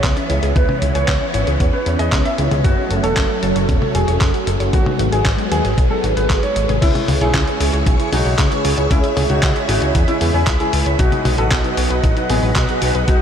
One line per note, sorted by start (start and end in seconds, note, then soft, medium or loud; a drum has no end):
0.00 0.14 C#2 loud
0.00 2.61 E3 medium
0.00 2.61 B3 medium
0.00 0.13 B3 medium
0.00 4.69 C#4 medium
0.00 kick loud
0.00 clap loud
0.00 closed hi-hat medium
0.17 0.26 C#4 medium
0.17 closed hi-hat soft
0.30 0.40 C#2 medium
0.30 0.35 E4 loud
0.30 closed hi-hat medium
0.43 0.53 C#2 medium
0.43 0.48 G#4 loud
0.43 closed hi-hat soft
0.56 0.66 C#2 loud
0.56 0.65 B3 medium
0.56 0.81 B4 medium
0.56 kick loud
0.56 closed hi-hat medium
0.69 0.78 C#4 medium
0.69 high tom medium
0.82 0.92 C#2 medium
0.82 0.87 E4 loud
0.82 closed hi-hat medium
0.95 1.05 C#2 medium
0.95 1.00 G#4 loud
0.95 1.20 C#5 medium
0.95 closed hi-hat medium
1.08 1.18 C#2 loud
1.08 1.17 B3 medium
1.08 kick loud
1.08 clap loud
1.08 closed hi-hat medium
1.21 1.30 C#4 medium
1.34 1.44 G#1 medium
1.34 1.40 E4 loud
1.34 1.59 C#5 medium
1.34 closed hi-hat medium
1.47 1.57 C#2 medium
1.47 1.53 G#4 loud
1.47 closed hi-hat medium
1.60 1.70 E2 loud
1.60 1.69 B3 medium
1.60 kick loud
1.60 closed hi-hat medium
1.73 1.82 C#4 medium
1.73 1.90 B4 medium
1.86 1.96 E2 medium
1.86 1.92 E4 loud
1.86 closed hi-hat medium
1.99 2.09 E2 medium
1.99 2.05 G#4 loud
1.99 2.16 D#5 medium
1.99 closed hi-hat medium
2.12 2.22 C#2 loud
2.12 2.22 B3 medium
2.12 kick loud
2.12 clap loud
2.12 closed hi-hat medium
2.25 2.35 C#4 medium
2.25 2.51 E5 medium
2.25 closed hi-hat soft
2.38 2.48 C#2 medium
2.38 2.44 E4 loud
2.38 closed hi-hat medium
2.51 2.61 C#2 medium
2.51 2.57 G#4 loud
2.51 closed hi-hat soft
2.51 high tom medium
2.64 2.74 F#1 loud
2.64 4.71 F#3 medium
2.64 4.71 A3 medium
2.64 2.74 C#4 medium
2.64 2.90 F#4 loud
2.64 kick loud
2.64 closed hi-hat medium
2.78 2.87 F#4 medium
2.91 3.01 F#1 medium
2.91 2.96 A4 loud
2.91 closed hi-hat medium
3.03 3.14 E1 medium
3.03 3.29 A4 medium
3.03 3.09 C#5 loud
3.03 closed hi-hat medium
3.17 3.27 F#1 loud
3.17 3.26 C#4 medium
3.17 kick loud
3.17 clap loud
3.17 closed hi-hat medium
3.30 3.39 F#4 medium
3.43 3.53 F#1 medium
3.43 3.48 A4 loud
3.43 closed hi-hat medium
3.56 3.66 F#1 medium
3.56 3.61 C#5 loud
3.56 closed hi-hat medium
3.69 3.79 E1 loud
3.69 3.78 C#4 medium
3.69 kick loud
3.69 closed hi-hat medium
3.82 3.91 F#4 medium
3.82 high tom medium
3.95 4.05 E1 medium
3.95 4.20 G#4 medium
3.95 4.00 A4 loud
3.95 closed hi-hat medium
4.08 4.18 E1 medium
4.08 4.13 C#5 loud
4.08 closed hi-hat medium
4.21 4.31 F#1 loud
4.21 4.30 C#4 medium
4.21 kick loud
4.21 clap loud
4.21 closed hi-hat medium
4.34 4.43 F#4 medium
4.34 closed hi-hat soft
4.47 4.57 F#1 medium
4.47 4.53 A4 loud
4.47 closed hi-hat medium
4.60 4.70 F#1 medium
4.60 4.66 C#5 loud
4.60 closed hi-hat medium
4.73 4.83 G#1 loud
4.73 6.80 F#3 medium
4.73 6.80 G#3 medium
4.73 4.82 B3 medium
4.73 6.80 B3 medium
4.73 4.98 F#4 medium
4.73 kick loud
4.73 closed hi-hat medium
4.86 4.95 D#4 medium
4.86 high tom medium
4.99 5.09 G#1 medium
4.99 5.05 F#4 loud
4.99 closed hi-hat medium
5.12 5.22 G#1 medium
5.12 5.38 G#4 medium
5.12 5.18 G#4 loud
5.12 closed hi-hat medium
5.25 5.35 G#1 loud
5.25 5.35 B3 medium
5.25 kick loud
5.25 clap loud
5.25 closed hi-hat medium
5.38 5.47 D#4 medium
5.38 closed hi-hat soft
5.51 5.61 D#2 loud
5.51 5.57 F#4 loud
5.51 5.77 G#4 medium
5.51 closed hi-hat medium
5.65 5.75 G#1 medium
5.65 5.70 G#4 loud
5.65 closed hi-hat medium
5.78 5.88 B1 loud
5.78 5.87 B3 medium
5.78 kick loud
5.78 closed hi-hat medium
5.90 6.00 D#4 medium
5.90 6.07 A4 medium
6.04 6.14 G#1 medium
6.04 6.09 F#4 loud
6.04 closed hi-hat medium
6.17 6.27 G#1 medium
6.17 6.22 G#4 loud
6.17 6.33 B4 medium
6.17 closed hi-hat medium
6.30 6.40 G#1 loud
6.30 6.39 B3 medium
6.30 kick loud
6.30 clap loud
6.30 closed hi-hat medium
6.43 6.52 D#4 medium
6.43 6.68 C#5 medium
6.43 closed hi-hat soft
6.56 6.66 G#1 medium
6.56 6.61 F#4 loud
6.56 closed hi-hat medium
6.69 6.79 G#1 medium
6.69 6.75 G#4 loud
6.69 closed hi-hat medium
6.69 high tom medium
6.82 6.92 C#2 loud
6.82 7.03 C#3 medium
6.82 7.03 G#3 medium
6.82 7.07 C#4 medium
6.82 7.03 C#4 medium
6.82 6.91 C#4 medium
6.82 7.07 E4 loud
6.82 7.03 E4 medium
6.82 7.03 G#4 medium
6.82 10.95 G#4 medium
6.82 10.95 C#5 medium
6.82 10.95 E5 medium
6.82 8.89 C#6 medium
6.82 kick loud
6.82 closed hi-hat medium
6.82 crash loud
6.95 7.04 E4 medium
6.95 closed hi-hat soft
6.95 high tom medium
7.08 7.18 C#2 loud
7.08 7.14 G#4 loud
7.08 open hi-hat loud
7.08 high tom medium
7.21 7.31 B1 medium
7.21 7.57 C#3 medium
7.21 7.57 G#3 medium
7.21 7.57 C#4 medium
7.21 7.57 E4 medium
7.21 7.47 E4 medium
7.21 7.57 G#4 loud
7.21 7.47 G#4 medium
7.21 7.27 C#5 loud
7.21 closed hi-hat soft
7.34 7.44 C#2 loud
7.34 7.43 C#4 medium
7.34 kick loud
7.34 clap loud
7.34 closed hi-hat loud
7.47 7.56 E4 medium
7.47 closed hi-hat soft
7.60 7.70 C#2 loud
7.60 7.96 C#3 loud
7.60 7.96 G#3 medium
7.60 7.96 C#4 medium
7.60 7.96 E4 medium
7.60 7.66 G#4 loud
7.60 7.96 G#4 loud
7.60 open hi-hat medium
7.73 7.83 C#2 medium
7.73 7.79 C#5 loud
7.73 closed hi-hat soft
7.86 7.96 B1 loud
7.86 7.95 C#4 medium
7.86 kick loud
7.86 closed hi-hat loud
7.99 8.10 C#3 medium
7.99 8.10 G#3 medium
7.99 8.10 C#4 medium
7.99 8.08 E4 medium
7.99 8.10 E4 medium
7.99 8.10 G#4 medium
7.99 closed hi-hat soft
8.12 8.22 B1 medium
8.12 8.33 C#3 medium
8.12 8.33 G#3 medium
8.12 8.33 C#4 medium
8.12 8.38 D#4 medium
8.12 8.33 E4 medium
8.12 8.38 F#4 medium
8.12 8.33 G#4 medium
8.12 8.18 G#4 loud
8.12 open hi-hat loud
8.25 8.35 B1 medium
8.25 8.31 C#5 loud
8.38 8.48 C#2 loud
8.38 8.48 C#4 medium
8.38 kick loud
8.38 clap loud
8.38 closed hi-hat loud
8.51 8.63 C#3 medium
8.51 8.63 G#3 medium
8.51 8.63 C#4 medium
8.51 8.61 E4 medium
8.51 8.63 E4 medium
8.51 8.63 B4 loud
8.51 closed hi-hat soft
8.65 8.74 C#2 loud
8.65 8.88 C#3 medium
8.65 8.88 G#3 medium
8.65 8.87 C#4 medium
8.65 8.88 E4 medium
8.65 8.70 G#4 loud
8.65 8.88 B4 medium
8.65 open hi-hat medium
8.78 8.88 C#2 medium
8.78 8.83 C#5 loud
8.78 closed hi-hat soft
8.91 9.01 C#2 loud
8.91 9.12 C#3 medium
8.91 9.12 G#3 medium
8.91 9.16 C#4 medium
8.91 9.12 C#4 medium
8.91 9.00 C#4 medium
8.91 9.16 E4 medium
8.91 9.12 E4 medium
8.91 9.12 G#4 medium
8.91 10.97 B5 medium
8.91 kick loud
8.91 closed hi-hat medium
9.04 9.13 E4 medium
9.04 closed hi-hat soft
9.17 9.27 C#2 medium
9.17 9.22 G#4 loud
9.17 open hi-hat loud
9.17 high tom medium
9.30 9.40 C#2 medium
9.30 9.66 C#3 loud
9.30 9.66 G#3 medium
9.30 9.66 C#4 medium
9.30 9.55 D#4 medium
9.30 9.66 E4 medium
9.30 9.55 F#4 medium
9.30 9.66 G#4 loud
9.30 9.35 C#5 loud
9.30 closed hi-hat soft
9.43 9.53 C#2 loud
9.43 9.52 C#4 medium
9.43 kick loud
9.43 clap loud
9.43 closed hi-hat loud
9.56 9.65 E4 medium
9.56 closed hi-hat soft
9.68 9.79 G#1 medium
9.68 10.05 C#3 medium
9.68 10.05 G#3 medium
9.68 10.05 C#4 medium
9.68 9.94 D#4 medium
9.68 10.05 E4 medium
9.68 9.94 F#4 medium
9.68 9.74 G#4 loud
9.68 10.05 G#4 loud
9.68 open hi-hat medium
9.82 9.92 C#2 medium
9.82 9.87 C#5 loud
9.82 closed hi-hat soft
9.95 10.05 E2 loud
9.95 10.04 C#4 medium
9.95 kick loud
9.95 closed hi-hat medium
10.08 10.18 C#3 medium
10.08 10.18 G#3 medium
10.08 10.25 C#4 medium
10.08 10.18 C#4 medium
10.08 10.25 E4 medium
10.08 10.17 E4 medium
10.08 10.18 E4 medium
10.08 10.18 G#4 medium
10.08 closed hi-hat soft
10.21 10.31 E2 medium
10.21 10.42 C#3 medium
10.21 10.42 G#3 medium
10.21 10.42 C#4 medium
10.21 10.42 E4 medium
10.21 10.26 G#4 loud
10.21 10.42 G#4 loud
10.21 open hi-hat loud
10.34 10.44 E2 medium
10.34 10.51 E4 medium
10.34 10.51 G#4 medium
10.34 10.40 C#5 loud
10.47 10.57 C#2 loud
10.47 10.56 C#4 medium
10.47 kick loud
10.47 clap loud
10.47 closed hi-hat medium
10.60 10.71 C#3 medium
10.60 10.71 G#3 medium
10.60 10.71 C#4 medium
10.60 10.69 E4 medium
10.60 10.85 E4 medium
10.60 10.71 E4 medium
10.60 10.85 G#4 medium
10.60 10.71 B4 loud
10.60 closed hi-hat soft
10.73 10.83 C#2 medium
10.73 10.96 G#3 medium
10.73 10.96 C#4 medium
10.73 10.96 E4 medium
10.73 10.79 G#4 loud
10.73 10.96 B4 medium
10.73 open hi-hat medium
10.86 10.96 C#2 medium
10.86 10.92 C#5 loud
10.86 closed hi-hat soft
10.99 11.09 B1 loud
10.99 11.20 B2 medium
10.99 11.20 F#3 medium
10.99 11.08 B3 medium
10.99 11.20 B3 medium
10.99 11.24 D#4 medium
10.99 11.20 D#4 medium
10.99 11.24 F#4 loud
10.99 11.20 F#4 medium
10.99 13.22 B4 medium
10.99 13.22 D#5 medium
10.99 13.22 F#5 medium
10.99 13.06 D#6 medium
10.99 kick loud
10.99 closed hi-hat medium
11.12 11.21 D#4 medium
11.12 closed hi-hat soft
11.12 high tom medium
11.25 11.35 B1 medium
11.25 11.31 F#4 loud
11.25 open hi-hat loud
11.25 high tom medium
11.38 11.48 A1 medium
11.38 11.74 B2 loud
11.38 11.74 F#3 medium
11.38 11.74 B3 medium
11.38 11.74 D#4 medium
11.38 11.64 F#4 medium
11.38 11.74 F#4 loud
11.38 11.64 A4 medium
11.38 11.44 B4 loud
11.38 closed hi-hat soft
11.51 11.61 B1 loud
11.51 11.60 B3 medium
11.51 kick loud
11.51 clap loud
11.51 closed hi-hat medium
11.64 11.74 D#4 medium
11.64 closed hi-hat soft
11.77 11.87 B1 loud
11.77 12.13 B2 medium
11.77 12.14 F#3 medium
11.77 12.14 B3 medium
11.77 12.14 D#4 medium
11.77 12.13 F#4 loud
11.77 11.83 F#4 loud
11.77 open hi-hat medium
11.90 12.00 B1 medium
11.90 11.96 B4 loud
11.90 closed hi-hat soft
12.04 12.13 A1 loud
12.04 12.13 B3 medium
12.04 kick loud
12.04 closed hi-hat medium
12.17 12.27 B2 medium
12.17 12.27 F#3 medium
12.17 12.27 B3 medium
12.17 12.27 D#4 medium
12.17 12.26 D#4 medium
12.17 12.27 F#4 loud
12.17 closed hi-hat soft
12.30 12.40 A1 medium
12.30 12.51 B2 medium
12.30 12.51 F#3 medium
12.30 12.51 B3 medium
12.30 12.55 B3 medium
12.30 12.51 D#4 medium
12.30 12.35 F#4 loud
12.30 12.51 F#4 loud
12.30 12.55 G#4 medium
12.30 open hi-hat loud
12.43 12.53 A1 medium
12.43 12.48 B4 loud
12.56 12.66 B1 loud
12.56 12.65 B3 medium
12.56 kick loud
12.56 clap loud
12.56 closed hi-hat medium
12.69 12.80 B2 medium
12.69 12.80 F#3 medium
12.69 12.80 B3 medium
12.69 12.80 D#4 medium
12.69 12.78 D#4 medium
12.69 12.80 G#4 loud
12.69 closed hi-hat soft
12.82 12.92 B1 loud
12.82 13.05 B2 medium
12.82 13.05 F#3 medium
12.82 13.05 B3 medium
12.82 13.05 D#4 medium
12.82 12.87 F#4 loud
12.82 13.05 G#4 medium
12.82 open hi-hat medium
12.95 13.05 B1 medium
12.95 13.00 B4 loud
12.95 closed hi-hat soft
13.08 13.18 B1 loud
13.08 13.22 B2 medium
13.08 13.22 F#3 medium
13.08 13.17 B3 medium
13.08 13.22 B3 medium
13.08 13.22 D#4 medium
13.08 13.22 F#4 medium
13.08 13.22 C#6 medium
13.08 kick loud
13.08 closed hi-hat medium